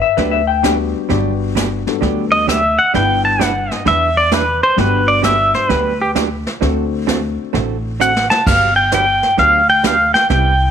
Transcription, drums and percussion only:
0.17 brush sweep soft
0.17 kick soft
0.17 snare soft
0.64 kick soft
0.64 snare medium
0.64 hi-hat pedal medium
1.10 brush sweep soft
1.10 kick soft
1.10 snare soft
1.56 kick soft
1.56 snare medium
1.56 hi-hat pedal medium
1.87 snare soft
2.02 brush sweep soft
2.02 kick soft
2.02 snare soft
2.48 kick soft
2.48 snare medium
2.48 hi-hat pedal medium
2.94 brush sweep medium
2.94 kick soft
2.94 snare medium
3.40 kick soft
3.40 snare medium
3.40 hi-hat pedal medium
3.71 snare soft
3.86 brush sweep medium
3.86 kick soft
3.86 snare soft
4.32 kick soft
4.32 snare medium
4.32 hi-hat pedal medium
4.78 brush sweep soft
4.78 kick soft
4.78 snare soft
5.24 kick soft
5.24 snare medium
5.24 hi-hat pedal medium
5.54 snare soft
5.70 brush sweep medium
5.70 kick soft
5.70 snare soft
6.16 kick soft
6.16 snare medium
6.16 hi-hat pedal medium
6.47 snare soft
6.62 brush sweep medium
6.62 kick soft
6.62 snare soft
7.08 kick soft
7.08 snare medium
7.08 hi-hat pedal medium
7.54 brush sweep medium
7.54 kick soft
7.54 snare soft
8.01 hi-hat pedal medium
8.16 snare medium
8.31 snare medium
8.47 brush sweep medium
8.47 kick medium
8.47 snare medium
8.47 crash medium
8.92 kick soft
8.92 snare medium
8.92 hi-hat pedal medium
9.23 snare soft
9.38 brush sweep soft
9.38 kick soft
9.38 snare soft
9.84 kick soft
9.84 snare medium
9.84 hi-hat pedal medium
10.15 snare soft
10.30 brush sweep medium
10.30 kick soft
10.30 snare medium

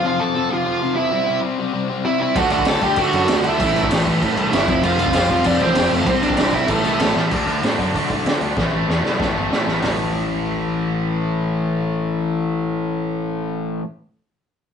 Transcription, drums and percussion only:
2.36 kick loud
2.36 crash medium
2.50 crash medium
2.59 kick medium
2.65 snare loud
2.65 crash loud
2.81 kick medium
2.81 crash medium
2.96 kick medium
2.96 crash medium
3.13 crash medium
3.28 snare loud
3.28 crash loud
3.44 crash medium
3.60 kick loud
3.60 crash medium
3.76 crash medium
3.83 kick medium
3.91 snare loud
3.91 crash loud
4.06 kick medium
4.06 crash medium
4.22 kick loud
4.22 crash medium
4.37 crash medium
4.53 snare loud
4.53 crash medium
4.68 kick loud
4.68 crash medium
4.83 crash medium
4.99 crash medium
5.06 kick loud
5.13 snare loud
5.13 crash loud
5.29 kick loud
5.29 crash medium
5.44 kick medium
5.44 crash medium
5.60 crash medium
5.75 snare loud
5.75 crash loud
5.91 crash medium
6.07 kick loud
6.07 crash medium
6.23 crash medium
6.30 kick medium
6.37 snare loud
6.37 crash loud
6.53 kick loud
6.53 crash medium
6.68 kick medium
6.68 crash medium
6.84 crash medium
7.00 snare loud
7.00 crash medium
7.17 snare medium
7.31 kick loud
7.31 crash loud
7.47 open hi-hat medium
7.63 snare loud
7.63 open hi-hat medium
7.79 kick medium
7.79 open hi-hat medium
7.94 kick medium
7.94 open hi-hat medium
8.10 kick medium
8.10 open hi-hat medium
8.26 snare loud
8.26 open hi-hat medium
8.41 open hi-hat medium
8.57 kick loud
8.57 snare medium
8.90 snare medium
9.05 snare medium
9.20 kick loud
9.20 snare medium
9.52 snare loud
9.68 snare medium
9.82 snare medium
9.82 floor tom loud
9.82 open hi-hat medium

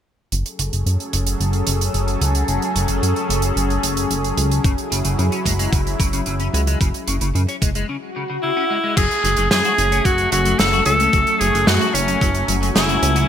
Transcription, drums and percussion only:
0.32 closed hi-hat medium
0.46 closed hi-hat soft
0.59 closed hi-hat medium
0.73 closed hi-hat medium
0.87 closed hi-hat medium
1.00 closed hi-hat soft
1.13 closed hi-hat loud
1.27 closed hi-hat medium
1.41 closed hi-hat medium
1.53 closed hi-hat soft
1.67 closed hi-hat loud
1.81 closed hi-hat medium
1.94 closed hi-hat medium
2.08 closed hi-hat soft
2.21 closed hi-hat loud
2.35 closed hi-hat medium
2.48 closed hi-hat medium
2.62 closed hi-hat soft
2.76 closed hi-hat medium
2.88 closed hi-hat medium
3.03 closed hi-hat medium
3.16 closed hi-hat soft
3.30 closed hi-hat loud
3.42 closed hi-hat medium
3.57 closed hi-hat medium
3.70 closed hi-hat soft
3.83 closed hi-hat loud
3.97 closed hi-hat medium
4.11 closed hi-hat medium
4.24 closed hi-hat soft
4.38 closed hi-hat medium
4.51 closed hi-hat medium
4.64 kick loud
4.64 closed hi-hat medium
4.78 closed hi-hat soft
4.92 closed hi-hat loud
5.05 closed hi-hat medium
5.19 closed hi-hat medium
5.32 closed hi-hat soft
5.46 kick medium
5.46 closed hi-hat loud
5.59 closed hi-hat medium
5.73 kick loud
5.73 closed hi-hat medium
5.87 closed hi-hat soft
6.00 kick loud
6.00 closed hi-hat medium
6.13 closed hi-hat medium
6.26 closed hi-hat medium
6.40 closed hi-hat soft
6.54 closed hi-hat medium
6.67 closed hi-hat medium
6.81 kick loud
6.81 closed hi-hat medium
6.94 closed hi-hat soft
7.08 closed hi-hat medium
7.21 closed hi-hat medium
7.35 closed hi-hat medium
7.49 closed hi-hat soft
7.62 kick loud
7.62 closed hi-hat loud
7.75 closed hi-hat medium
8.97 kick loud
8.97 closed hi-hat medium
8.97 crash medium
9.11 closed hi-hat soft
9.25 closed hi-hat medium
9.37 closed hi-hat medium
9.51 snare loud
9.51 closed hi-hat medium
9.65 closed hi-hat soft
9.78 closed hi-hat medium
9.92 closed hi-hat medium
10.05 kick loud
10.05 closed hi-hat medium
10.18 closed hi-hat soft
10.32 closed hi-hat loud
10.45 closed hi-hat medium
10.59 snare loud
10.59 closed hi-hat medium
10.73 closed hi-hat soft
10.86 closed hi-hat loud
11.00 closed hi-hat medium
11.13 kick loud
11.13 closed hi-hat medium
11.27 closed hi-hat soft
11.41 closed hi-hat loud
11.55 closed hi-hat medium
11.67 snare loud
11.67 closed hi-hat medium
11.81 closed hi-hat soft
11.95 closed hi-hat loud
12.08 closed hi-hat medium
12.21 kick loud
12.21 closed hi-hat medium
12.35 closed hi-hat soft
12.48 closed hi-hat loud
12.63 closed hi-hat medium
12.76 snare loud
12.76 closed hi-hat medium
12.89 closed hi-hat soft
13.03 closed hi-hat loud
13.16 closed hi-hat medium

